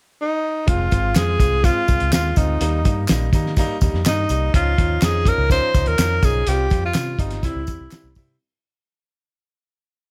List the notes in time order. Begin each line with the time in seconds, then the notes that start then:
0.21 D#4
0.67 F1 G#3 C4 F4, kick, closed hi-hat
0.91 G#1 G#3 C4 F4, kick, closed hi-hat, tambourine
1.15 F2 G#3 C4 F4 G#4, snare, clap, closed hi-hat, tambourine
1.39 C2 G#3 C4 F4, kick, closed hi-hat, tambourine
1.63 G#3 C4 F4, kick, closed hi-hat, tambourine
1.88 C2 G#3 C4 F4, kick, closed hi-hat, tambourine
2.00 C#2, closed hi-hat
2.12 D#2 G#3 C4 F4, snare, clap, closed hi-hat, tambourine
2.36 D2 G#3 C4 D#4 F4, kick, closed hi-hat, tambourine
2.60 D#2 G3 A#3 D#4, closed hi-hat, tambourine
2.85 G2 G3 A#3 D#4, kick, closed hi-hat, tambourine
3.08 A#1 G3 A#3 D#4, snare, clap, closed hi-hat, tambourine
3.33 D#3 G3 A#3 D#4, kick, closed hi-hat, tambourine
3.46 snare
3.56 G3 A#3 D#4, kick, closed hi-hat, tambourine
3.81 D#2 G3 A#3 D#4, kick, closed hi-hat, tambourine
3.94 F2, snare
4.05 G2 A#3 D#4, snare, clap, closed hi-hat, tambourine
4.29 C2 G3 A#3 D#4, closed hi-hat, tambourine
4.54 C#2 F3 C#4 D#4 F4, kick, closed hi-hat, tambourine
4.78 D#2 F3 C#4 D#4, kick, closed hi-hat
5.02 F2 F3 C#4 D#4 G#4, snare, clap, closed hi-hat, tambourine
5.25 F3 C#4 D#4 A#4, kick, closed hi-hat, tambourine
5.38 C#2
5.50 F3 C#4 D#4 C5, kick, closed hi-hat, tambourine
5.74 C#2 F3 C#4 D#4, kick, closed hi-hat, tambourine
5.86 D#2 A#4, closed hi-hat
5.98 F2 F3 C#4 D#4, snare, clap, closed hi-hat, tambourine
6.22 B1 F3 C#4 D#4 G#4, kick, closed hi-hat, tambourine
6.47 C2 G3 C4 F4 G4, closed hi-hat, tambourine
6.70 F2 G3 C4 F4, kick, closed hi-hat, tambourine
6.86 F4
6.94 C3 G3 C4 F4, snare, clap, closed hi-hat, tambourine
7.19 G1 G3 C4 D#4 F4, kick, closed hi-hat, tambourine
7.31 snare, closed hi-hat
7.43 C2 G3 C4 E4, kick, closed hi-hat, tambourine
7.55 C#2
7.67 E2 G3 C4 E4, kick, closed hi-hat, tambourine
7.80 C2
7.91 G3 C4 E4, snare, clap, closed hi-hat, tambourine
8.04 C2
8.15 C3 G3 C4 E4, kick, open hi-hat, tambourine